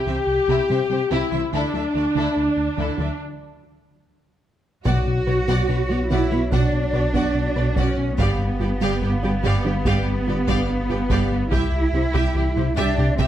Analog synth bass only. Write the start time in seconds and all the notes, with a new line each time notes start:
0.06 C2
0.27 C2
0.48 C2
0.69 C3
0.89 C3
1.11 C2
1.32 C2
1.52 D2
1.73 D2
1.94 D2
2.15 D2
2.36 D2
2.57 D2
2.78 D2
2.98 D2
4.86 B2
5.07 B2
5.27 B2
5.48 B2
5.69 B2
5.90 B3
6.11 B2
6.31 B3
6.52 B2
6.73 B2
6.93 B2
7.14 B2
7.35 B2
7.56 B2
7.77 B2
7.98 B2
8.18 G2
8.38 G2
8.60 G2
8.81 G2
9.02 G2
9.23 G3
9.44 G2
9.65 G3
9.85 G2
10.07 G2
10.27 G2
10.48 G2
10.69 G2
10.89 G2
11.10 G2
11.32 G2
11.52 C2
11.72 C2
11.93 C2
12.14 C2
12.35 C2
12.56 C3
12.77 C2
12.98 C3
13.19 C2